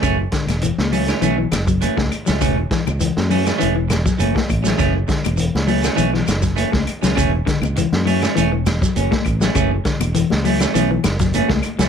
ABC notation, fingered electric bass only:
X:1
M:4/4
L:1/16
Q:"Swing 16ths" 1/4=101
K:F#m
V:1 name="Fingered electric bass" clef=bass
F,,,2 z E,,,2 C,,3 B,,,2 F,,,3 C,, z C,, | E,,,2 z C,,2 F,,3 E,,,4 F,,, z A,,,2 | F,,,2 z E,,,2 C,,3 B,,,2 F,,,3 C,, z C,, | E,,,2 z C,,2 F,,3 E,,,4 F,,, z A,,,2 |
F,,,2 z E,,,2 C,,3 B,,,2 F,,,3 C,, z C,, |]